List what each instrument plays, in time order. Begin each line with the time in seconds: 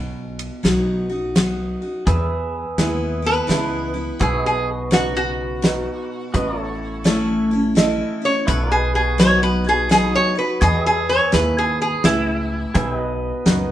Already playing: upright bass B1, steel-string acoustic guitar B2
0.39 ride
0.63 upright bass B1, steel-string acoustic guitar F#3 B3 D#4 F#4, snare, ride
1.10 steel-string acoustic guitar D#4 F#4
1.35 steel-string acoustic guitar F#3 B3 D#4 F#4, snare, ride
1.82 steel-string acoustic guitar D#4 F#4
2.07 upright bass E2, steel-string acoustic guitar E2, pedal steel guitar G#4 B4 E5, kick, closed hi-hat
2.78 upright bass D#2, steel-string acoustic guitar G#3 B3 E4, upright piano E4 G#4 B4, snare, closed hi-hat
3.22 steel-string acoustic guitar B3 E4
3.26 resonator guitar played with a steel bar B4
3.47 upright bass C#2, steel-string acoustic guitar E3 G#3 B3 E4, upright piano E4 G#4 B4, snare, closed hi-hat
3.94 steel-string acoustic guitar B3 E4
4.19 upright bass B1, steel-string acoustic guitar B2, pedal steel guitar F#4 B4 E5, resonator guitar played with a steel bar G#4, kick, closed hi-hat
4.42 pedal steel guitar D#5
4.46 resonator guitar played with a steel bar G#4
4.91 steel-string acoustic guitar C#3, upright piano D#4 F#4 B4, resonator guitar played with a steel bar F#4, snare, closed hi-hat
5.17 resonator guitar played with a steel bar F#4
5.62 steel-string acoustic guitar B2, upright piano D#4 F#4 B4, snare, closed hi-hat
6.34 upright bass A1, steel-string acoustic guitar A2, pedal steel guitar F#4 B4 D#5, kick, closed hi-hat
6.59 pedal steel guitar E4 A4 C#5
7.04 steel-string acoustic guitar E3 A3 C#4 E4, upright piano E4 A4 C#5, snare, closed hi-hat
7.51 steel-string acoustic guitar C#4 E4
7.75 steel-string acoustic guitar E3 A3 C#4 E4, upright piano E4 A4 D#5, snare, closed hi-hat
8.22 steel-string acoustic guitar C#4 E4, resonator guitar played with a steel bar C#5
8.47 upright bass B1, steel-string acoustic guitar B2, pedal steel guitar E4 A4 C#5, resonator guitar played with a steel bar B4, kick, closed hi-hat
8.72 pedal steel guitar F#4 B4 D#5, resonator guitar played with a steel bar G#4
8.95 resonator guitar played with a steel bar G#4
9.18 steel-string acoustic guitar F#3 B3 D#4 F#4, upright piano D#4 F#4 B4, resonator guitar played with a steel bar C#5, snare, closed hi-hat
9.43 resonator guitar played with a steel bar B4
9.64 steel-string acoustic guitar D#4 F#4
9.69 resonator guitar played with a steel bar G#4
9.89 steel-string acoustic guitar F#3 B3 D#4 F#4, upright piano D#4 F#4 B4, resonator guitar played with a steel bar G#4, snare, closed hi-hat
10.15 resonator guitar played with a steel bar C#5
10.35 steel-string acoustic guitar D#4 F#4, resonator guitar played with a steel bar B4
10.61 steel-string acoustic guitar E2, upright bass E2, pedal steel guitar F#4 B4 D#5, resonator guitar played with a steel bar G#4, kick, closed hi-hat
10.84 resonator guitar played with a steel bar G#4, pedal steel guitar G#4 E5
11.09 resonator guitar played with a steel bar C#5
11.32 upright bass D#2, steel-string acoustic guitar G#2, upright piano E4 G#4 B4, resonator guitar played with a steel bar B4, snare, closed hi-hat
11.58 resonator guitar played with a steel bar G#4
11.82 resonator guitar played with a steel bar G#4
12.04 upright bass C#2, steel-string acoustic guitar A2, upright piano E4 G#4 B4, resonator guitar played with a steel bar E4, snare, closed hi-hat
12.74 upright bass B1, steel-string acoustic guitar B2, pedal steel guitar G#4 B4 E5, kick, closed hi-hat
12.96 pedal steel guitar F#4 D#5
13.46 upright bass C#2, steel-string acoustic guitar F#2, upright piano D#4 F#4 B4, snare, closed hi-hat